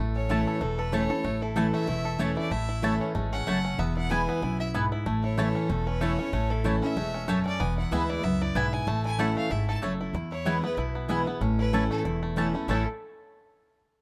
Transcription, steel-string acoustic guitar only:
0.00 0.59 A2 medium
0.29 0.60 E3 loud
0.29 0.60 A3 loud
0.29 0.60 C#4 medium
0.29 0.61 E4 medium
0.61 1.22 E2 medium
0.92 1.10 E3 medium
0.92 1.10 A3 medium
0.92 1.10 C#4 loud
0.92 1.08 E4 medium
1.10 1.25 C#4 soft
1.10 1.24 E4 medium
1.24 1.85 A2 medium
1.56 1.87 E3 loud
1.56 1.87 A3 medium
1.56 1.87 C#4 medium
1.56 1.87 E4 loud
1.87 2.49 E2 loud
2.18 2.50 E3 medium
2.18 2.50 A3 loud
2.18 2.50 C#4 medium
2.18 2.51 E4 medium
2.51 3.12 A2 medium
2.82 3.13 E3 medium
2.82 3.14 A3 medium
2.82 3.14 C#4 medium
2.82 3.14 E4 loud
3.15 3.45 G#3 medium
3.47 3.77 F#2 medium
3.79 4.39 E2 medium
4.10 4.41 E3 loud
4.10 4.41 G#3 medium
4.10 4.41 B3 medium
4.10 4.41 E4 loud
4.42 4.73 F#2 medium
4.75 5.05 G#2 medium
5.06 5.67 A2 medium
5.37 5.68 E3 medium
5.37 5.68 A3 medium
5.37 5.69 C#4 medium
5.37 5.69 E4 loud
5.70 6.30 E2 medium
6.01 6.18 E3 medium
6.01 6.18 A3 medium
6.01 6.19 C#4 medium
6.01 6.17 E4 loud
6.18 6.33 C#4 medium
6.18 6.32 E4 medium
6.33 6.94 A2 medium
6.64 6.81 E3 medium
6.64 6.82 A3 medium
6.64 6.82 C#4 medium
6.64 6.81 E4 loud
6.82 6.96 C#4 medium
6.82 6.96 E4 medium
6.97 7.27 G#3 medium
7.28 7.58 F#2 loud
7.60 8.21 E2 medium
7.91 8.22 E3 medium
7.91 8.22 G#3 loud
7.91 8.22 B3 loud
7.91 8.23 E4 loud
8.23 8.54 F#2 medium
8.55 8.86 G#2 medium
8.87 9.48 A2 medium
9.18 9.49 E3 medium
9.18 9.49 A3 medium
9.18 9.50 C#4 loud
9.18 9.50 E4 loud
9.50 9.81 G#2 medium
9.83 10.13 F#2 medium
10.14 10.75 E2 medium
10.45 10.63 E3 medium
10.45 10.63 G#3 medium
10.45 10.63 B3 loud
10.45 10.62 E4 loud
10.63 10.78 B3 soft
10.63 10.77 E4 medium
10.77 11.38 B2 medium
11.08 11.26 E3 medium
11.08 11.26 G#3 medium
11.08 11.26 B3 medium
11.08 11.26 E4 loud
11.27 11.41 B3 soft
11.27 11.41 E4 medium
11.41 12.02 A2 medium
11.73 12.03 E3 medium
11.73 12.04 A3 medium
11.73 12.04 C#4 loud
11.73 12.04 E4 medium
12.05 12.66 E2 medium
12.36 12.53 E3 medium
12.36 12.54 A3 medium
12.36 12.54 C#4 medium
12.36 12.53 E4 medium
12.54 12.68 C#4 soft
12.54 12.68 E4 medium
12.68 12.82 A2 medium
12.68 12.83 E3 medium
12.68 12.83 A3 medium
12.68 12.83 C#4 medium
12.68 12.83 E4 medium

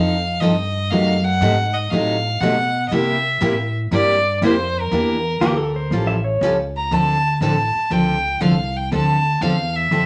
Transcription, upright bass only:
0.00 0.40 F2 medium
0.42 0.90 G2 medium
0.92 1.40 F#2 medium
1.41 1.90 G#2 medium
1.91 2.40 A2 medium
2.40 2.90 B2 medium
2.91 3.40 C3 medium
3.41 3.90 A2 medium
3.91 4.40 G2 medium
4.42 4.90 F2 medium
4.91 5.40 E2 medium
5.40 5.90 D2 medium
5.91 6.40 A1 medium
6.41 6.90 C#2 medium
6.91 7.40 D2 medium
7.41 7.73 A1 medium
7.75 muted upright bass stroke soft
7.90 8.40 C#2 medium
8.41 8.90 C2 medium
8.92 9.40 D2 medium
9.41 9.90 E2 medium
9.91 10.06 F2 medium

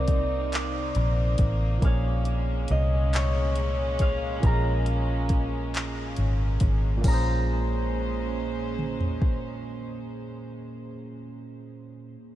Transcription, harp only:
0.00 0.54 D5 loud
0.55 2.39 D5 medium
1.85 3.51 F5 medium
2.71 4.50 D#5 medium
3.15 5.06 C#5 medium
4.01 5.68 F5 loud
4.46 5.86 A#5 medium
7.08 10.91 A#5 medium

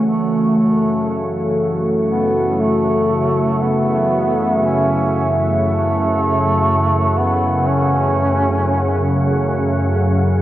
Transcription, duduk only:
0.06 0.52 A3 medium
0.57 1.28 A3 medium
2.10 2.62 B3 medium
2.60 3.63 A3 medium
3.61 4.62 B3 medium
4.65 5.36 C#4 medium
5.65 7.19 A3 medium
7.18 7.69 B3 medium
7.67 9.20 C#4 medium

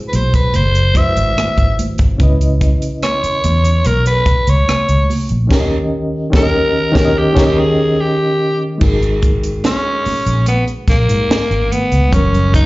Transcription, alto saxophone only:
0.08 0.17 B4 medium
0.15 0.34 C5 medium
0.35 0.57 B4 medium
0.55 0.99 C5 medium
0.97 1.79 E5 loud
3.04 3.88 C#5 loud
3.87 4.07 A#4 medium
4.07 4.51 B4 medium
4.49 5.10 C#5 medium
6.36 7.20 A#4 loud
7.18 7.61 G4 loud
7.59 8.02 G#4 medium
8.01 8.62 G4 medium
9.66 10.44 C#4 medium
10.48 10.64 B3 medium
10.89 11.74 A#3 medium
11.72 12.15 B3 medium
12.13 12.54 C#4 medium
12.55 12.66 D#4 medium

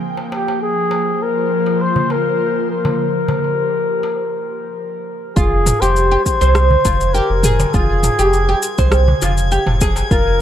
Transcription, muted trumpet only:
0.33 0.60 G4 medium
0.62 1.24 G#4 loud
1.22 1.83 A#4 loud
1.81 2.13 C5 loud
2.11 2.70 A#4 loud
2.71 5.04 A#4 medium
5.36 5.82 G#4 loud
5.80 6.24 C5 loud
6.25 7.15 C5 loud
7.14 7.74 A#4 loud
7.73 8.92 G#4 medium
10.12 10.41 A#4 loud

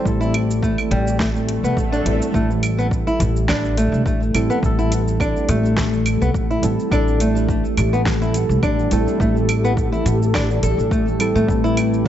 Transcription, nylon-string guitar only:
0.21 0.34 E4 medium
0.63 0.77 A3 medium
0.91 1.19 G3 medium
1.20 1.29 A3 medium
1.64 1.77 B3 medium
1.92 2.05 D4 medium
2.34 2.49 A3 medium
2.78 2.86 B3 medium
3.07 3.20 E4 medium
3.49 3.76 D4 medium
3.77 4.05 A3 medium
4.06 4.21 A3 medium
4.50 4.57 B3 medium
4.79 4.91 E4 medium
5.20 5.48 D4 loud
5.49 5.76 A3 medium
5.78 5.92 A3 medium
6.22 6.29 B3 medium
6.51 6.63 E4 medium
6.92 7.19 D4 loud
7.21 7.48 A3 medium
7.50 7.64 A3 medium
7.93 8.00 B3 medium
8.22 8.34 E4 medium
8.63 8.90 D4 medium
8.92 9.19 A3 medium
9.21 9.35 A3 medium
9.64 9.72 B3 medium
9.92 10.05 E4 medium
10.34 10.48 D4 loud
10.63 10.78 A4 medium
10.92 11.05 A3 medium
11.36 11.48 A3 medium
11.64 11.77 E4 medium

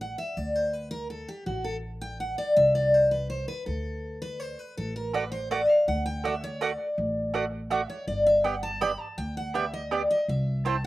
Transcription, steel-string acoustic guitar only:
0.01 0.18 F#5 medium
0.18 0.37 E5 medium
0.37 0.55 D5 medium
0.55 0.73 C5 loud
0.73 0.90 B4 medium
0.91 1.09 A#4 loud
1.10 1.28 A4 medium
1.28 1.46 G4 medium
1.46 1.65 F#4 medium
1.64 1.76 A4 medium
2.01 2.20 G5 loud
2.20 2.38 F#5 medium
2.38 2.56 D5 loud
2.56 2.75 E5 loud
2.75 2.94 D5 loud
2.94 3.11 C5 medium
3.11 3.29 B4 medium
3.30 3.48 C5 medium
3.48 3.66 B4 loud
3.66 4.18 A4 medium
4.22 4.40 B4 loud
4.40 4.59 C5 loud
4.59 4.77 B4 loud
4.77 4.95 A4 medium
4.96 5.14 A#4 medium
5.14 5.31 B4 medium
5.32 5.50 C5 loud
5.51 5.69 D5 medium
5.69 5.87 F5 loud
5.88 6.05 F#5 medium
6.06 6.24 G5 loud
6.25 6.43 E5 medium
6.44 6.61 C#5 loud
6.61 7.35 D5 medium
7.71 7.89 E5 medium
7.90 8.07 C#5 medium
8.08 8.26 D5 medium
8.26 8.44 E5 loud
8.44 8.62 F#5 medium
8.63 8.81 A5 loud
8.82 9.00 B5 loud
9.00 9.17 A5 loud
9.18 9.36 G5 loud
9.37 9.55 F#5 loud
9.55 9.73 E5 medium
9.74 9.93 D#5 loud
9.93 10.10 D5 medium
10.11 10.29 D#5 loud
10.29 10.63 E5 medium
10.66 10.84 A5 loud

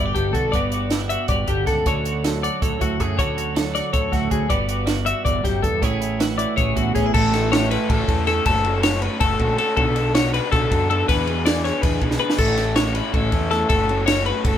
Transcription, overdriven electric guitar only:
7.14 7.52 A2 medium
7.14 7.71 E3 medium
7.14 7.35 A3 loud
7.14 7.34 C#4 loud
7.14 7.34 E4 medium
7.14 7.33 A4 loud
7.33 7.51 A3 medium
7.33 7.52 C#4 medium
7.33 7.53 E4 medium
7.33 7.53 A4 medium
7.51 7.71 A3 medium
7.51 7.71 C#4 medium
7.51 7.69 E4 loud
7.51 7.70 A4 medium
7.70 8.09 A2 medium
7.70 8.09 E3 medium
7.70 7.88 A3 medium
7.70 7.89 C#4 medium
7.70 7.89 E4 loud
7.70 7.91 A4 medium
7.89 8.09 A3 medium
7.89 8.09 C#4 medium
7.89 8.07 E4 medium
7.89 8.08 A4 medium
8.08 8.46 A2 medium
8.08 8.45 E3 medium
8.08 8.26 A3 medium
8.08 8.27 C#4 medium
8.08 8.27 E4 medium
8.08 8.29 A4 medium
8.26 8.46 A3 medium
8.26 8.46 C#4 medium
8.26 8.45 E4 medium
8.26 9.81 A4 medium
8.46 8.83 F#3 medium
8.46 8.66 A3 medium
8.46 8.65 C#4 loud
8.46 8.64 F#4 loud
8.65 8.83 A3 medium
8.65 8.84 C#4 medium
8.65 8.84 F#4 medium
8.83 9.03 F#3 medium
8.83 9.01 A3 medium
8.83 9.01 C#4 medium
8.83 9.00 F#4 medium
9.01 9.20 F#3 medium
9.01 9.19 A3 medium
9.01 9.20 C#4 medium
9.01 9.22 F#4 medium
9.20 9.42 F#3 medium
9.20 9.40 A3 medium
9.20 9.40 C#4 medium
9.20 9.39 F#4 medium
9.40 9.59 F#3 medium
9.40 9.59 A3 medium
9.40 9.60 C#4 medium
9.40 9.62 F#4 medium
9.59 9.77 F#3 medium
9.59 9.77 A3 medium
9.59 9.77 C#4 medium
9.59 9.79 F#4 medium
9.78 10.15 B2 medium
9.78 10.15 F#3 medium
9.78 9.98 B3 medium
9.78 9.97 D4 loud
9.78 9.96 F#4 medium
9.96 10.16 B3 medium
9.96 10.16 D4 medium
9.96 10.16 F#4 medium
10.15 10.34 F#3 medium
10.15 10.35 B3 medium
10.15 10.33 D4 loud
10.15 10.33 F#4 loud
10.34 10.71 B2 medium
10.34 10.52 F#3 medium
10.34 10.53 B3 medium
10.34 10.53 D4 loud
10.34 10.53 F#4 medium
10.53 10.71 F#3 medium
10.53 10.71 B3 medium
10.53 10.70 D4 medium
10.53 10.69 F#4 medium
10.70 11.08 B2 medium
10.70 10.88 F#3 medium
10.70 10.90 B3 medium
10.70 10.89 D4 medium
10.70 10.90 F#4 medium
10.89 11.07 F#3 medium
10.89 11.09 B3 medium
10.89 11.07 D4 medium
10.89 11.08 F#4 medium
11.09 11.45 E3 medium
11.09 11.28 B3 medium
11.09 11.26 D4 medium
11.09 11.26 G#4 loud
11.26 11.45 B3 medium
11.26 11.45 D4 medium
11.26 11.47 G#4 medium
11.45 11.66 E3 medium
11.45 11.65 B3 medium
11.45 11.64 D4 medium
11.45 11.64 G#4 medium
11.64 11.83 E3 medium
11.64 11.83 B3 medium
11.64 11.83 D4 medium
11.64 11.84 G#4 loud
11.83 12.03 E3 medium
11.83 12.02 B3 medium
11.83 12.01 D4 medium
11.83 12.01 G#4 medium
12.02 12.20 E3 medium
12.02 12.20 B3 medium
12.02 12.20 D4 medium
12.02 12.21 G#4 medium
12.20 12.39 E3 medium
12.20 12.38 B3 medium
12.20 12.38 D4 medium
12.20 12.40 G#4 medium
12.39 12.76 A2 medium
12.39 12.75 E3 medium
12.39 12.59 A3 loud
12.39 12.58 C#4 medium
12.39 12.56 E4 medium
12.57 12.76 A3 medium
12.57 12.77 C#4 medium
12.57 12.77 E4 medium
12.75 12.94 E3 medium
12.75 12.95 A3 medium
12.75 12.94 C#4 medium
12.75 12.93 E4 medium
12.94 13.33 A2 medium
12.94 13.11 E3 medium
12.94 13.13 A3 medium
12.94 13.14 C#4 loud
12.94 13.14 E4 medium
13.12 13.33 E3 medium
13.12 13.33 A3 medium
13.12 13.33 C#4 medium
13.12 13.31 E4 medium
13.32 13.69 A2 medium
13.32 13.50 E3 medium
13.32 13.52 A3 medium
13.32 13.53 C#4 medium
13.32 13.52 E4 medium
13.51 13.68 E3 medium
13.51 13.69 A3 medium
13.51 13.70 C#4 medium
13.51 13.70 E4 medium
13.69 14.08 F#3 medium
13.69 13.90 A3 medium
13.69 13.90 C#4 medium
13.69 13.88 F#4 loud
13.89 14.09 A3 medium
13.89 14.10 C#4 medium
13.89 14.10 F#4 medium
14.09 14.29 F#3 medium
14.09 14.28 A3 medium
14.09 14.28 C#4 medium
14.09 14.26 F#4 loud
14.28 14.44 F#3 medium
14.28 14.45 A3 medium
14.28 14.46 C#4 loud
14.28 14.45 F#4 loud
14.45 14.58 F#3 medium
14.45 14.58 A3 medium
14.45 14.58 C#4 medium
14.45 14.58 F#4 medium

